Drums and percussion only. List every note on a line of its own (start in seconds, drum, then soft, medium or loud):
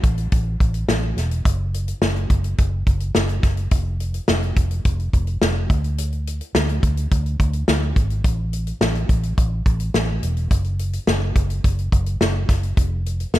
0.03 kick medium
0.03 closed hi-hat medium
0.18 closed hi-hat soft
0.32 kick medium
0.32 closed hi-hat medium
0.60 kick medium
0.60 closed hi-hat medium
0.74 closed hi-hat soft
0.89 snare medium
1.17 snare soft
1.17 closed hi-hat medium
1.31 closed hi-hat soft
1.45 kick medium
1.45 closed hi-hat medium
1.74 closed hi-hat medium
1.88 closed hi-hat soft
2.02 snare loud
2.16 closed hi-hat soft
2.30 kick medium
2.30 closed hi-hat medium
2.44 closed hi-hat soft
2.58 kick medium
2.58 closed hi-hat medium
2.87 kick medium
2.87 closed hi-hat medium
3.00 closed hi-hat soft
3.15 snare medium
3.29 closed hi-hat soft
3.43 kick medium
3.43 snare soft
3.43 closed hi-hat medium
3.57 closed hi-hat soft
3.71 kick loud
3.71 closed hi-hat medium
4.00 closed hi-hat medium
4.14 closed hi-hat soft
4.28 snare medium
4.43 closed hi-hat soft
4.57 kick medium
4.57 closed hi-hat medium
4.71 closed hi-hat soft
4.85 kick medium
4.85 closed hi-hat medium
5.00 closed hi-hat soft
5.13 kick medium
5.13 closed hi-hat medium
5.27 closed hi-hat soft
5.42 snare medium
5.70 kick loud
5.70 closed hi-hat medium
5.84 closed hi-hat soft
5.98 closed hi-hat medium
6.12 closed hi-hat soft
6.27 closed hi-hat medium
6.41 closed hi-hat soft
6.55 snare loud
6.69 closed hi-hat soft
6.83 kick medium
6.83 closed hi-hat medium
6.97 closed hi-hat soft
7.11 kick medium
7.11 closed hi-hat medium
7.26 closed hi-hat soft
7.40 kick medium
7.40 closed hi-hat medium
7.53 closed hi-hat soft
7.68 snare medium
7.96 kick medium
7.96 closed hi-hat medium
8.10 closed hi-hat soft
8.24 kick medium
8.24 closed hi-hat medium
8.53 closed hi-hat medium
8.67 closed hi-hat soft
8.81 snare loud
8.95 closed hi-hat soft
9.09 kick medium
9.09 closed hi-hat medium
9.23 closed hi-hat soft
9.38 kick medium
9.38 closed hi-hat medium
9.66 kick medium
9.66 closed hi-hat medium
9.80 closed hi-hat soft
9.94 snare medium
10.23 closed hi-hat medium
10.37 closed hi-hat soft
10.51 kick medium
10.51 closed hi-hat medium
10.64 closed hi-hat soft
10.79 closed hi-hat medium
10.93 closed hi-hat soft
11.07 snare loud
11.36 kick medium
11.36 closed hi-hat medium
11.50 closed hi-hat soft
11.64 kick medium
11.64 closed hi-hat medium
11.79 closed hi-hat soft
11.92 kick medium
11.92 closed hi-hat medium
12.06 closed hi-hat soft
12.21 snare medium
12.49 kick medium
12.49 snare soft
12.49 closed hi-hat medium
12.63 closed hi-hat soft
12.77 kick loud
12.77 closed hi-hat medium
13.06 closed hi-hat medium
13.20 closed hi-hat soft
13.34 snare loud